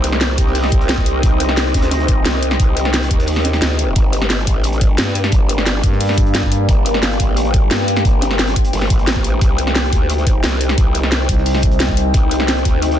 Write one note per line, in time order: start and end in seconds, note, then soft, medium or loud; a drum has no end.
0.00 0.37 C2 loud
0.00 3.92 C4 medium
0.00 3.96 D#4 medium
0.00 3.92 G4 medium
0.00 4.49 C5 medium
0.00 3.92 D#5 medium
0.00 12.99 G5 medium
0.00 closed hi-hat medium
0.04 closed hi-hat medium
0.12 snare soft
0.21 snare loud
0.21 closed hi-hat medium
0.29 snare soft
0.38 1.22 C2 loud
0.38 kick medium
0.38 closed hi-hat medium
0.46 snare soft
0.55 closed hi-hat medium
0.55 open hi-hat medium
0.64 snare soft
0.72 kick loud
0.72 closed hi-hat medium
0.81 closed hi-hat soft
0.89 snare loud
0.89 closed hi-hat medium
0.98 kick medium
1.06 closed hi-hat medium
1.23 1.73 C2 loud
1.23 kick loud
1.23 closed hi-hat medium
1.23 closed hi-hat loud
1.40 closed hi-hat medium
1.40 closed hi-hat loud
1.49 snare soft
1.57 snare loud
1.57 closed hi-hat loud
1.57 closed hi-hat medium
1.66 closed hi-hat soft
1.74 2.24 D2 loud
1.74 kick medium
1.74 snare loud
1.74 closed hi-hat loud
1.74 closed hi-hat medium
1.82 snare loud
1.82 closed hi-hat medium
1.91 snare loud
1.91 closed hi-hat medium
2.00 closed hi-hat soft
2.08 kick loud
2.08 closed hi-hat medium
2.08 closed hi-hat loud
2.25 2.58 C2 loud
2.25 snare loud
2.25 closed hi-hat medium
2.25 closed hi-hat loud
2.34 snare medium
2.43 closed hi-hat medium
2.43 closed hi-hat loud
2.51 snare medium
2.51 closed hi-hat soft
2.60 3.09 C2 loud
2.60 kick loud
2.60 closed hi-hat medium
2.77 closed hi-hat loud
2.77 closed hi-hat medium
2.85 snare soft
2.94 snare loud
2.94 closed hi-hat medium
3.03 closed hi-hat medium
3.11 3.61 D#2 loud
3.11 kick medium
3.11 closed hi-hat loud
3.20 closed hi-hat medium
3.27 closed hi-hat medium
3.27 open hi-hat medium
3.36 snare soft
3.44 snare loud
3.44 closed hi-hat medium
3.53 snare soft
3.53 closed hi-hat soft
3.61 3.95 D2 loud
3.61 snare loud
3.61 closed hi-hat loud
3.61 closed hi-hat medium
3.79 closed hi-hat medium
3.79 closed hi-hat loud
3.95 4.46 G1 loud
3.95 9.37 A#3 medium
3.95 9.41 D4 medium
3.95 12.99 G4 medium
3.95 6.66 D5 medium
3.95 kick loud
3.95 closed hi-hat medium
4.13 10.16 A#4 medium
4.13 closed hi-hat loud
4.13 closed hi-hat medium
4.22 snare soft
4.30 snare loud
4.30 closed hi-hat medium
4.39 closed hi-hat soft
4.47 4.97 A1 medium
4.47 kick medium
4.47 closed hi-hat medium
4.64 closed hi-hat medium
4.73 closed hi-hat soft
4.81 kick loud
4.81 closed hi-hat medium
4.98 5.31 G2 loud
4.98 snare loud
4.98 closed hi-hat medium
5.07 snare medium
5.15 closed hi-hat loud
5.15 closed hi-hat medium
5.24 snare medium
5.24 closed hi-hat soft
5.32 5.82 G1 loud
5.32 kick loud
5.32 closed hi-hat loud
5.32 closed hi-hat medium
5.49 closed hi-hat medium
5.49 closed hi-hat loud
5.58 snare medium
5.67 snare loud
5.67 closed hi-hat medium
5.74 snare soft
5.83 6.67 G2 medium
5.83 kick medium
5.83 closed hi-hat medium
5.92 snare soft
6.00 closed hi-hat medium
6.00 open hi-hat medium
6.09 snare soft
6.18 kick loud
6.18 closed hi-hat loud
6.18 closed hi-hat medium
6.26 closed hi-hat soft
6.34 snare loud
6.34 closed hi-hat medium
6.43 kick medium
6.52 closed hi-hat medium
6.52 closed hi-hat loud
6.69 7.18 G1 loud
6.69 9.39 C5 medium
6.69 kick loud
6.69 closed hi-hat medium
6.86 closed hi-hat loud
6.86 closed hi-hat medium
6.94 snare soft
7.02 snare loud
7.02 closed hi-hat medium
7.12 closed hi-hat soft
7.19 7.70 A1 medium
7.19 kick medium
7.19 closed hi-hat medium
7.37 closed hi-hat medium
7.45 closed hi-hat soft
7.54 kick loud
7.54 closed hi-hat medium
7.71 8.04 G2 loud
7.71 snare loud
7.71 closed hi-hat medium
7.80 snare medium
7.88 closed hi-hat medium
7.96 snare medium
7.96 closed hi-hat soft
8.05 8.55 G1 loud
8.05 kick loud
8.05 closed hi-hat medium
8.22 snare loud
8.22 closed hi-hat medium
8.31 snare soft
8.31 closed hi-hat soft
8.39 snare loud
8.39 closed hi-hat medium
8.47 snare loud
8.47 closed hi-hat medium
8.56 kick medium
8.56 closed hi-hat soft
8.56 closed hi-hat medium
8.65 closed hi-hat medium
8.73 8.89 G1 loud
8.73 closed hi-hat medium
8.73 open hi-hat medium
8.82 snare soft
8.90 9.40 A1 loud
8.90 kick loud
8.90 closed hi-hat medium
8.99 closed hi-hat soft
9.07 snare loud
9.07 closed hi-hat medium
9.16 kick medium
9.24 closed hi-hat medium
9.41 9.91 C2 loud
9.41 12.99 C4 medium
9.41 12.99 D#4 medium
9.41 12.99 D#5 medium
9.41 kick loud
9.41 closed hi-hat medium
9.58 12.99 C5 medium
9.58 closed hi-hat medium
9.67 snare soft
9.75 snare loud
9.75 closed hi-hat medium
9.84 closed hi-hat soft
9.93 10.42 D2 loud
9.93 kick medium
9.93 closed hi-hat medium
10.09 closed hi-hat medium
10.18 closed hi-hat soft
10.27 kick loud
10.27 closed hi-hat medium
10.43 10.76 C2 loud
10.43 snare loud
10.43 closed hi-hat medium
10.52 snare medium
10.61 closed hi-hat medium
10.69 snare medium
10.69 closed hi-hat soft
10.78 11.28 C2 loud
10.78 kick loud
10.78 closed hi-hat medium
10.95 closed hi-hat loud
10.95 closed hi-hat medium
11.03 snare soft
11.12 snare loud
11.12 closed hi-hat medium
11.21 snare soft
11.29 12.13 C2 loud
11.29 kick medium
11.29 closed hi-hat medium
11.38 snare soft
11.46 closed hi-hat medium
11.46 open hi-hat medium
11.55 snare soft
11.62 kick loud
11.62 closed hi-hat medium
11.62 closed hi-hat loud
11.71 closed hi-hat soft
11.79 snare loud
11.79 closed hi-hat loud
11.79 closed hi-hat medium
11.89 kick medium
11.97 closed hi-hat medium
12.14 12.64 C2 loud
12.14 kick loud
12.14 closed hi-hat medium
12.31 closed hi-hat loud
12.31 closed hi-hat medium
12.40 snare soft
12.48 snare loud
12.48 closed hi-hat medium
12.48 closed hi-hat loud
12.56 closed hi-hat soft
12.65 12.99 D2 loud
12.65 kick medium
12.65 closed hi-hat medium
12.65 closed hi-hat loud
12.82 closed hi-hat medium
12.91 closed hi-hat soft